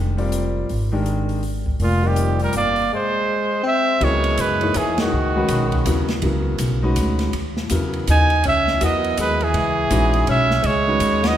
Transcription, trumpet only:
1.83 F4
2.07 G4
2.44 A#4
2.57 D5
2.95 C5
3.67 E5
4.04 C#5
4.41 B4
4.77 G#4
5.01 F#4
8.11 G#5
8.48 E5
8.85 D#5
9.21 B4
9.43 G#4
10.30 E5
10.66 C#5
11.27 D#5

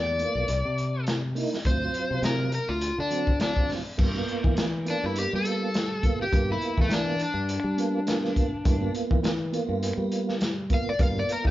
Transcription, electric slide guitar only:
Already playing: D5
1.67 C5
2.25 A#4
2.55 A#4
2.69 F4
3.00 D4
3.42 D4
4.90 D4
5.06 E4
5.18 G4
5.35 A4
6.22 G4
6.52 E4
6.81 A3
6.94 D4
7.22 D4
10.74 F5
10.89 D5
11.03 F5
11.19 D5
11.32 A#4

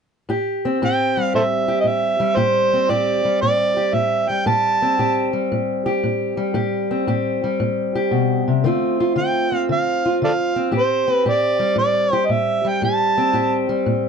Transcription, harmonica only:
0.85 G5
1.35 A4 C5 E5
1.80 D#5
1.87 E5
2.37 C5
2.90 D5
3.41 D5
3.94 E5
4.28 G5
4.47 A5
9.18 G5
9.72 F5
10.24 A4 D5 F5
10.77 C5
11.12 B4
11.29 D5
11.78 D5
12.13 C5
12.26 D#5
12.31 E5
12.68 G5
12.85 A5

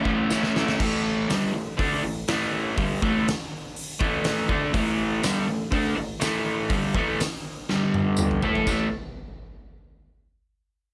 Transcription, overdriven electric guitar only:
0.04 A2 E3 A3 C#4 E4
0.30 E3 A3 C#4 E4
0.55 A3 C#4 E4
0.80 A2 E3 A3
1.28 G2 D3 G3
1.53 A2 E3
1.77 D3 A3 D4
2.04 A2 E3
2.28 A2 E3 A3
2.76 G2 D3 G3
3.02 A2 E3 A3
3.99 A2 E3 A3
4.49 D3 A3 D4
4.73 A2 E3 A3
5.22 G2 D3 G3
5.48 A2 E3
5.71 D3 A3 D4
5.96 A2 E3
6.20 A2 E3 A3
6.70 G2 D3 G3
6.95 A2 E3 A3
7.69 G2 D3 G3
8.43 A3 E4 A4
8.68 A2 E3 A3

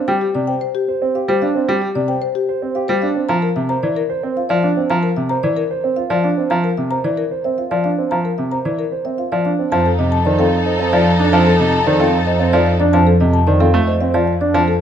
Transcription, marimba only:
0.08 G5
0.21 G4
0.35 D5
0.47 G5
0.61 C5
0.75 G4
1.15 F5
1.29 C5
1.42 F5
1.69 G5
1.82 G4
1.95 D5
2.08 G5
2.22 C5
2.35 G4
2.75 F5
2.88 C5
3.02 F5
3.29 A#5
3.42 A#4
3.56 E5
3.69 A#5
3.83 D5
3.97 A#4
4.37 F5
4.49 D5
4.63 F5
4.90 A#5
5.03 A#4
5.17 E5
5.29 A#5
5.43 D5
5.57 A#4
5.96 F5
6.10 D5
6.24 F5
6.50 A#5
6.64 A#4
6.77 E5
6.91 A#5
7.04 D5
7.17 A#4
7.44 E5
7.58 F5
7.71 D5
7.84 F5
8.11 A#5
8.25 A#4
8.38 E5
8.52 A#5
8.65 D5
8.79 A#4
9.05 E5
9.18 F5
9.32 D5
9.45 F5
9.72 A5
9.86 A4
9.99 D#5
10.12 A5
10.25 D5
10.39 A4
10.66 D#5
10.79 F5
10.93 D5
11.06 F5
11.20 D5
11.33 A5
11.46 A4
11.59 D#5
11.72 A5
11.86 D5
12.00 A4
12.27 D#5
12.40 F5
12.53 D5
12.66 F5
12.80 D5
12.93 A5
13.07 A4
13.20 D#5
13.33 A5
13.47 D5
13.61 A4
13.87 D#5
14.01 F5
14.14 D5
14.27 F5
14.41 D5
14.55 A5
14.68 A4

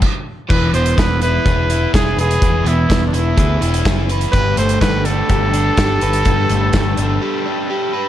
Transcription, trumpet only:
0.49 B4
0.74 C5
0.99 B4
1.22 B4
1.94 G#4
2.20 G#4
2.68 E4
3.07 D4
3.15 E4
4.32 B4
4.58 C5
4.81 B4
5.06 A4

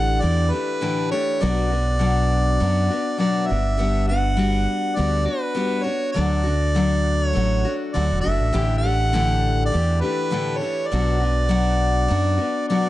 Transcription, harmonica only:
Already playing: F#5
0.21 D5
0.52 B4
1.11 C#5
1.42 D5
3.19 D5
3.46 E5
4.08 F#5
4.96 D5
5.26 B4
5.84 C#5
6.12 D5
7.25 C#5
7.93 D5
8.21 E5
8.78 F#5
9.66 D5
10.01 B4
10.57 C#5
10.88 D5
12.68 D5

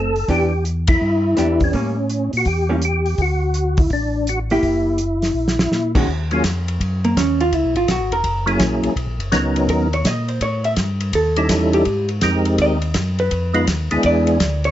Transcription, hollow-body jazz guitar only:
Already playing: A3 C4 D#4
0.29 E3 B3 D4 G4
1.37 E3 B3 D4 G4
1.73 G3 A#3 C#4
2.69 G3 A#3 C#4
4.51 A#3 E4 G4
5.95 D#3 G#3 C#4 F#4
7.05 A#3
7.17 C#4
7.41 F4
7.55 E4
7.77 F4
7.91 F#4
8.13 A#4
9.70 A#4
9.94 C#5
10.07 D#5
10.28 C5
10.42 C#5
10.65 E5
11.15 A4
11.74 G4
12.62 D#5
13.20 B4
14.06 D5
14.65 C#5

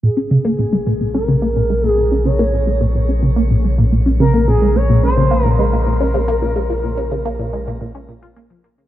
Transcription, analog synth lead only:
0.03 G#4
1.14 A#4
1.88 G#4
2.26 C#5
4.20 A#4
4.48 G#4
4.76 C#5
5.03 C5
5.43 A#4
5.59 A#4

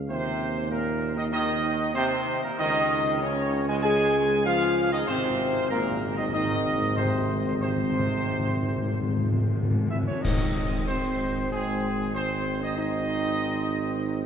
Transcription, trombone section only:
0.10 C3
0.71 A#2
1.17 D#3
1.32 D#3
1.95 C3
2.43 A#2
2.59 D#3
3.22 C#3
3.68 G#3
3.83 G#3
4.46 F3
4.92 D#3
5.08 C3
5.71 A#2
6.18 D#3
6.33 D#3
6.96 C3
7.46 C3
7.62 C3
10.24 D#3 C4
10.89 D#3 C4
11.53 D#3 C4
12.15 D#3 C4
12.77 D#3 C4

